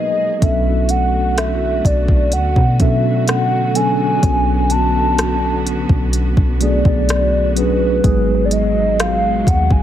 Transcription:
Already playing: string section B2 G#3 G#4, soft synth lead D#5
0.41 808-style bass B1, string section D3 A3 F#4, tine electric piano F#3 B3 C#4 D4 A4, soft synth lead E5, kick, closed hi-hat
0.89 soft synth lead F#5, closed hi-hat
1.38 soft synth lead E5, cross-stick, closed hi-hat
1.85 808-style bass B1, soft synth lead D5, kick, closed hi-hat
2.08 kick
2.32 808-style bass D2, soft synth lead F#5, closed hi-hat
2.56 808-style bass B2, kick
2.79 tine electric piano F#3 B3 C#4 D4 A4, soft synth lead E5, kick, closed hi-hat
3.28 soft synth lead F#5, cross-stick, closed hi-hat
3.74 tine electric piano F#3 B3 C#4 D4 A4, soft synth lead G#5, closed hi-hat
4.22 808-style bass B1, tine electric piano F#3 B3 C#4 D4 F#4, string section B3, kick, closed hi-hat
4.70 soft synth lead A5, closed hi-hat
5.18 cross-stick, closed hi-hat
5.67 closed hi-hat
5.89 808-style bass B1, kick
6.13 closed hi-hat
6.37 808-style bass B1, kick
6.60 tine electric piano F#3 A3 B3 D4 G#4, soft synth lead D5, closed hi-hat
6.85 808-style bass B1, kick
7.09 cross-stick, closed hi-hat
7.56 tine electric piano F#3 B3 C#4 D4 G#4, soft synth lead B4, closed hi-hat
8.03 808-style bass G#1, string section B2 F#3 G#3, tine electric piano F#3 G#3 B3 D#4 G#4, kick, closed hi-hat
8.45 soft synth lead D5
8.51 soft synth lead D#5, closed hi-hat
9.00 soft synth lead F5, cross-stick, closed hi-hat
9.47 808-style bass D#2, soft synth lead F#5, kick, closed hi-hat
9.70 808-style bass G#1, soft synth lead G#5, kick

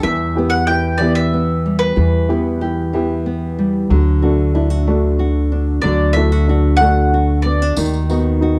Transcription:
Already playing: felt piano G3 A3 D4, nylon-string guitar G3
0.03 upright bass E2, nylon-string guitar E2, felt piano E3, mandolin E5
0.36 felt piano B3 E4 G4, nylon-string guitar B3
0.50 mandolin F#5
0.67 felt piano E4, nylon-string guitar G4, mandolin G5
0.98 nylon-string guitar E3, felt piano B3 E4 G4, mandolin D5
1.15 mandolin E5
1.34 nylon-string guitar B3
1.66 nylon-string guitar G3
1.79 mandolin B4
1.96 nylon-string guitar E2, upright bass E2, felt piano E3
2.29 felt piano B3 E4 G4, nylon-string guitar B3
2.61 felt piano E4, nylon-string guitar G4
2.93 nylon-string guitar E3, felt piano B3 E4 G4
3.26 nylon-string guitar B3
3.59 nylon-string guitar G3
3.90 upright bass D2, nylon-string guitar D3, felt piano F#3
4.22 felt piano A3 D4 F#4, nylon-string guitar F#4
4.55 felt piano D4, nylon-string guitar E4
4.70 nylon-string guitar F#4
4.87 felt piano A3 D4 F#4, nylon-string guitar A3
5.19 nylon-string guitar F#4
5.52 nylon-string guitar D4
5.82 upright bass D2, nylon-string guitar D3, felt piano F#3, mandolin D5
6.13 felt piano A3 D4, nylon-string guitar E4, mandolin E5
6.17 felt piano F#4
6.32 nylon-string guitar F#4
6.48 felt piano D4, nylon-string guitar F#4
6.77 felt piano A3, mandolin F#5
6.81 nylon-string guitar A3, felt piano D4 F#4
7.14 nylon-string guitar F#4
7.42 nylon-string guitar B3, mandolin D5
7.62 nylon-string guitar D4
7.76 upright bass D#2, felt piano D#3, nylon-string guitar D#3, tambourine
7.93 tambourine
8.10 felt piano B3 D#4 F#4, nylon-string guitar F#4, tambourine
8.41 felt piano D#4, nylon-string guitar F#4

